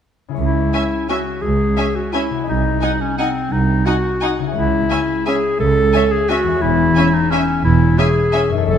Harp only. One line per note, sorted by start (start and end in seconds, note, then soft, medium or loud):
0.28 2.49 C#3 soft
0.28 2.47 E4 soft
0.28 2.38 G#4 soft
0.35 2.47 C#5 soft
2.30 4.49 C3 soft
2.35 4.51 F#4 soft
2.39 4.46 G#4 soft
2.44 4.56 D#5 soft
4.39 6.55 C#3 soft
4.39 6.47 E4 soft
4.47 6.51 G#4 soft
4.52 6.56 C#5 soft
6.44 8.59 E2 soft
6.48 8.61 E4 soft
6.52 8.64 G#4 soft
6.57 8.61 C#5 soft
8.49 8.78 F#2 soft
8.54 8.78 D#4 soft
8.58 8.78 A4 soft
8.62 8.78 C#5 soft